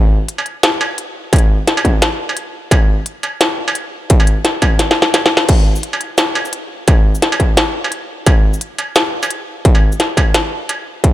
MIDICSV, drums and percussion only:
0, 0, Header, 1, 3, 480
1, 0, Start_track
1, 0, Tempo, 346821
1, 1838, Time_signature, 4, 2, 24, 8
1, 15408, End_track
2, 0, Start_track
2, 0, Title_t, "Struck metal"
2, 531, Note_on_c, 9, 77, 50
2, 670, Note_off_c, 9, 77, 0
2, 1118, Note_on_c, 9, 77, 75
2, 1256, Note_off_c, 9, 77, 0
2, 1837, Note_on_c, 9, 77, 55
2, 1975, Note_off_c, 9, 77, 0
2, 2453, Note_on_c, 9, 77, 79
2, 2592, Note_off_c, 9, 77, 0
2, 3172, Note_on_c, 9, 77, 50
2, 3310, Note_off_c, 9, 77, 0
2, 3758, Note_on_c, 9, 77, 83
2, 3896, Note_off_c, 9, 77, 0
2, 4474, Note_on_c, 9, 77, 51
2, 4612, Note_off_c, 9, 77, 0
2, 5089, Note_on_c, 9, 77, 80
2, 5228, Note_off_c, 9, 77, 0
2, 5811, Note_on_c, 9, 77, 59
2, 5949, Note_off_c, 9, 77, 0
2, 6394, Note_on_c, 9, 77, 78
2, 6532, Note_off_c, 9, 77, 0
2, 7113, Note_on_c, 9, 77, 57
2, 7251, Note_off_c, 9, 77, 0
2, 8210, Note_on_c, 9, 77, 55
2, 8348, Note_off_c, 9, 77, 0
2, 8794, Note_on_c, 9, 77, 81
2, 8932, Note_off_c, 9, 77, 0
2, 9516, Note_on_c, 9, 77, 55
2, 9654, Note_off_c, 9, 77, 0
2, 10134, Note_on_c, 9, 77, 79
2, 10272, Note_off_c, 9, 77, 0
2, 10856, Note_on_c, 9, 77, 55
2, 10995, Note_off_c, 9, 77, 0
2, 11438, Note_on_c, 9, 77, 78
2, 11577, Note_off_c, 9, 77, 0
2, 12158, Note_on_c, 9, 77, 50
2, 12297, Note_off_c, 9, 77, 0
2, 12771, Note_on_c, 9, 77, 77
2, 12909, Note_off_c, 9, 77, 0
2, 13491, Note_on_c, 9, 77, 51
2, 13630, Note_off_c, 9, 77, 0
2, 14081, Note_on_c, 9, 77, 76
2, 14219, Note_off_c, 9, 77, 0
2, 14798, Note_on_c, 9, 77, 51
2, 14936, Note_off_c, 9, 77, 0
2, 15408, End_track
3, 0, Start_track
3, 0, Title_t, "Drums"
3, 395, Note_on_c, 9, 42, 62
3, 533, Note_off_c, 9, 42, 0
3, 635, Note_on_c, 9, 42, 35
3, 774, Note_off_c, 9, 42, 0
3, 876, Note_on_c, 9, 38, 120
3, 876, Note_on_c, 9, 42, 73
3, 1015, Note_off_c, 9, 38, 0
3, 1015, Note_off_c, 9, 42, 0
3, 1357, Note_on_c, 9, 42, 66
3, 1496, Note_off_c, 9, 42, 0
3, 1837, Note_on_c, 9, 36, 116
3, 1837, Note_on_c, 9, 42, 70
3, 1882, Note_off_c, 9, 42, 0
3, 1882, Note_on_c, 9, 42, 60
3, 1917, Note_off_c, 9, 42, 0
3, 1917, Note_on_c, 9, 42, 50
3, 1975, Note_off_c, 9, 36, 0
3, 2055, Note_off_c, 9, 42, 0
3, 2318, Note_on_c, 9, 38, 61
3, 2318, Note_on_c, 9, 42, 61
3, 2457, Note_off_c, 9, 38, 0
3, 2457, Note_off_c, 9, 42, 0
3, 2556, Note_on_c, 9, 36, 60
3, 2559, Note_on_c, 9, 42, 34
3, 2695, Note_off_c, 9, 36, 0
3, 2698, Note_off_c, 9, 42, 0
3, 2796, Note_on_c, 9, 38, 116
3, 2796, Note_on_c, 9, 42, 76
3, 2935, Note_off_c, 9, 38, 0
3, 2935, Note_off_c, 9, 42, 0
3, 3275, Note_on_c, 9, 42, 65
3, 3413, Note_off_c, 9, 42, 0
3, 3754, Note_on_c, 9, 36, 115
3, 3758, Note_on_c, 9, 42, 77
3, 3893, Note_off_c, 9, 36, 0
3, 3896, Note_off_c, 9, 42, 0
3, 4234, Note_on_c, 9, 42, 64
3, 4373, Note_off_c, 9, 42, 0
3, 4474, Note_on_c, 9, 42, 34
3, 4612, Note_off_c, 9, 42, 0
3, 4715, Note_on_c, 9, 38, 110
3, 4715, Note_on_c, 9, 42, 78
3, 4853, Note_off_c, 9, 38, 0
3, 4853, Note_off_c, 9, 42, 0
3, 5194, Note_on_c, 9, 42, 65
3, 5332, Note_off_c, 9, 42, 0
3, 5673, Note_on_c, 9, 42, 83
3, 5676, Note_on_c, 9, 36, 116
3, 5812, Note_off_c, 9, 42, 0
3, 5814, Note_off_c, 9, 36, 0
3, 5912, Note_on_c, 9, 42, 38
3, 6050, Note_off_c, 9, 42, 0
3, 6153, Note_on_c, 9, 38, 58
3, 6153, Note_on_c, 9, 42, 66
3, 6292, Note_off_c, 9, 38, 0
3, 6292, Note_off_c, 9, 42, 0
3, 6394, Note_on_c, 9, 42, 36
3, 6397, Note_on_c, 9, 36, 60
3, 6532, Note_off_c, 9, 42, 0
3, 6535, Note_off_c, 9, 36, 0
3, 6633, Note_on_c, 9, 38, 65
3, 6633, Note_on_c, 9, 42, 81
3, 6771, Note_off_c, 9, 38, 0
3, 6771, Note_off_c, 9, 42, 0
3, 6794, Note_on_c, 9, 38, 78
3, 6933, Note_off_c, 9, 38, 0
3, 6950, Note_on_c, 9, 38, 84
3, 7088, Note_off_c, 9, 38, 0
3, 7113, Note_on_c, 9, 38, 91
3, 7113, Note_on_c, 9, 42, 69
3, 7251, Note_off_c, 9, 38, 0
3, 7251, Note_off_c, 9, 42, 0
3, 7275, Note_on_c, 9, 38, 94
3, 7414, Note_off_c, 9, 38, 0
3, 7432, Note_on_c, 9, 38, 100
3, 7570, Note_off_c, 9, 38, 0
3, 7593, Note_on_c, 9, 42, 84
3, 7593, Note_on_c, 9, 49, 78
3, 7596, Note_on_c, 9, 36, 118
3, 7731, Note_off_c, 9, 42, 0
3, 7731, Note_off_c, 9, 49, 0
3, 7734, Note_off_c, 9, 36, 0
3, 7967, Note_on_c, 9, 82, 67
3, 8072, Note_on_c, 9, 42, 70
3, 8106, Note_off_c, 9, 82, 0
3, 8210, Note_off_c, 9, 42, 0
3, 8314, Note_on_c, 9, 42, 37
3, 8452, Note_off_c, 9, 42, 0
3, 8550, Note_on_c, 9, 38, 120
3, 8550, Note_on_c, 9, 42, 83
3, 8550, Note_on_c, 9, 82, 68
3, 8689, Note_off_c, 9, 38, 0
3, 8689, Note_off_c, 9, 42, 0
3, 8689, Note_off_c, 9, 82, 0
3, 8929, Note_on_c, 9, 82, 67
3, 9035, Note_on_c, 9, 42, 72
3, 9068, Note_off_c, 9, 82, 0
3, 9173, Note_off_c, 9, 42, 0
3, 9516, Note_on_c, 9, 42, 88
3, 9518, Note_on_c, 9, 36, 126
3, 9654, Note_off_c, 9, 42, 0
3, 9657, Note_off_c, 9, 36, 0
3, 9893, Note_on_c, 9, 82, 65
3, 9997, Note_on_c, 9, 38, 63
3, 9997, Note_on_c, 9, 42, 68
3, 10031, Note_off_c, 9, 82, 0
3, 10135, Note_off_c, 9, 38, 0
3, 10135, Note_off_c, 9, 42, 0
3, 10238, Note_on_c, 9, 36, 64
3, 10239, Note_on_c, 9, 42, 39
3, 10377, Note_off_c, 9, 36, 0
3, 10378, Note_off_c, 9, 42, 0
3, 10480, Note_on_c, 9, 38, 123
3, 10480, Note_on_c, 9, 42, 84
3, 10618, Note_off_c, 9, 38, 0
3, 10618, Note_off_c, 9, 42, 0
3, 10959, Note_on_c, 9, 42, 70
3, 11097, Note_off_c, 9, 42, 0
3, 11438, Note_on_c, 9, 42, 83
3, 11439, Note_on_c, 9, 36, 126
3, 11577, Note_off_c, 9, 36, 0
3, 11577, Note_off_c, 9, 42, 0
3, 11813, Note_on_c, 9, 82, 63
3, 11918, Note_on_c, 9, 42, 68
3, 11951, Note_off_c, 9, 82, 0
3, 12056, Note_off_c, 9, 42, 0
3, 12158, Note_on_c, 9, 42, 35
3, 12297, Note_off_c, 9, 42, 0
3, 12397, Note_on_c, 9, 38, 121
3, 12397, Note_on_c, 9, 42, 82
3, 12397, Note_on_c, 9, 82, 62
3, 12535, Note_off_c, 9, 38, 0
3, 12535, Note_off_c, 9, 42, 0
3, 12535, Note_off_c, 9, 82, 0
3, 12771, Note_on_c, 9, 82, 64
3, 12878, Note_on_c, 9, 42, 69
3, 12909, Note_off_c, 9, 82, 0
3, 13017, Note_off_c, 9, 42, 0
3, 13356, Note_on_c, 9, 36, 127
3, 13356, Note_on_c, 9, 42, 81
3, 13494, Note_off_c, 9, 36, 0
3, 13494, Note_off_c, 9, 42, 0
3, 13731, Note_on_c, 9, 82, 66
3, 13837, Note_on_c, 9, 38, 65
3, 13837, Note_on_c, 9, 42, 66
3, 13870, Note_off_c, 9, 82, 0
3, 13975, Note_off_c, 9, 38, 0
3, 13975, Note_off_c, 9, 42, 0
3, 14077, Note_on_c, 9, 36, 64
3, 14081, Note_on_c, 9, 42, 36
3, 14215, Note_off_c, 9, 36, 0
3, 14219, Note_off_c, 9, 42, 0
3, 14317, Note_on_c, 9, 38, 120
3, 14317, Note_on_c, 9, 42, 78
3, 14455, Note_off_c, 9, 38, 0
3, 14455, Note_off_c, 9, 42, 0
3, 14798, Note_on_c, 9, 42, 67
3, 14936, Note_off_c, 9, 42, 0
3, 15276, Note_on_c, 9, 36, 118
3, 15277, Note_on_c, 9, 42, 79
3, 15408, Note_off_c, 9, 36, 0
3, 15408, Note_off_c, 9, 42, 0
3, 15408, End_track
0, 0, End_of_file